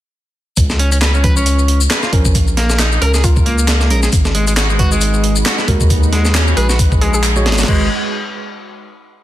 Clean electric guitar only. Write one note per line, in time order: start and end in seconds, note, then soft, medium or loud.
0.79 0.91 C#4 loud
0.92 0.97 C#4 loud
1.01 1.12 B4 medium
1.14 1.23 C#4 medium
1.24 1.34 B4 loud
1.36 1.80 C#4 loud
1.91 2.01 B4 medium
2.03 2.11 F4 medium
2.57 2.78 A#3 loud
2.80 2.91 D#4 loud
2.92 3.00 D#4 medium
3.02 3.13 A#4 loud
3.14 3.22 G#4 medium
3.46 3.90 A#3 loud
3.91 4.02 A#4 loud
4.03 4.08 G#4 medium
4.35 4.46 G#3 loud
4.47 4.52 G#3 loud
4.57 4.68 F#4 medium
4.70 4.78 G#3 medium
4.79 4.90 F#4 loud
4.92 5.35 G#3 loud
5.46 5.56 F#4 medium
5.59 5.67 B3 medium
6.13 6.34 G#3 loud
6.35 6.46 C#4 loud
6.47 6.55 C#4 medium
6.57 6.68 G#4 loud
6.70 6.78 F#4 medium
7.01 7.45 G#3 loud
7.46 7.57 G#4 loud
7.58 7.63 F#4 medium
7.68 7.89 G#3 loud